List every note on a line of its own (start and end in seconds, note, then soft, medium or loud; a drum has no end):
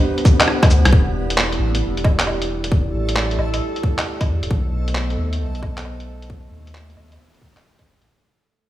0.00 0.93 B3 medium
0.00 0.89 D4 medium
0.00 0.88 G4 medium
0.00 0.88 C5 medium
0.00 0.93 B5 medium
0.18 closed hi-hat soft
0.25 kick loud
0.25 cabasa medium
0.40 clap loud
0.40 closed hi-hat medium
0.40 low woodblock medium
0.48 cross-stick medium
0.63 kick loud
0.63 cross-stick medium
0.63 closed hi-hat soft
0.63 low woodblock medium
0.70 0.84 D2 medium
0.70 cabasa medium
0.85 0.92 C2 loud
0.85 cross-stick medium
0.85 closed hi-hat medium
0.92 1.59 E1 loud
0.92 8.10 A3 medium
0.92 4.47 E4 medium
0.92 4.47 G4 medium
0.92 8.10 A4 medium
0.92 4.47 D5 medium
0.92 kick loud
1.30 closed hi-hat medium
1.38 clap loud
1.52 closed hi-hat soft
1.59 1.83 A1 medium
1.75 closed hi-hat medium
1.82 2.93 E1 medium
1.97 closed hi-hat soft
2.04 kick loud
2.04 low woodblock medium
2.19 clap loud
2.19 closed hi-hat medium
2.27 low woodblock medium
2.42 closed hi-hat soft
2.64 closed hi-hat medium
2.72 kick loud
2.94 3.38 A1 medium
3.09 closed hi-hat medium
3.16 clap loud
3.31 closed hi-hat soft
3.38 3.60 A1 medium
3.38 low woodblock medium
3.54 closed hi-hat medium
3.54 low woodblock soft
3.76 closed hi-hat soft
3.83 kick loud
3.98 clap loud
3.98 closed hi-hat medium
3.98 low woodblock medium
4.21 kick loud
4.21 closed hi-hat soft
4.21 low woodblock medium
4.28 4.42 E2 medium
4.42 4.50 D1 loud
4.42 closed hi-hat medium
4.50 5.17 B1 loud
4.50 8.05 B3 medium
4.50 8.05 A4 medium
4.50 8.05 C5 medium
4.50 8.05 D#5 medium
4.50 kick loud
4.88 closed hi-hat medium
4.95 clap loud
5.10 closed hi-hat soft
5.18 5.42 D#2 medium
5.33 closed hi-hat medium
5.40 6.51 B1 medium
5.55 closed hi-hat soft
5.62 kick loud
5.62 low woodblock medium
5.78 clap loud
5.78 closed hi-hat medium
5.85 low woodblock soft
6.00 closed hi-hat soft
6.22 closed hi-hat medium
6.30 kick loud
6.52 6.96 D#2 medium
6.67 closed hi-hat medium
6.75 clap loud
6.90 closed hi-hat soft
6.97 7.18 D#2 medium
6.97 low woodblock soft
7.12 closed hi-hat medium
7.12 low woodblock soft
7.35 closed hi-hat soft
7.42 kick loud
7.57 clap loud
7.57 closed hi-hat soft
7.57 low woodblock medium
7.79 kick medium
7.79 closed hi-hat soft
7.79 low woodblock medium
7.86 8.00 F#1 medium
8.01 8.08 A1 medium
8.01 closed hi-hat soft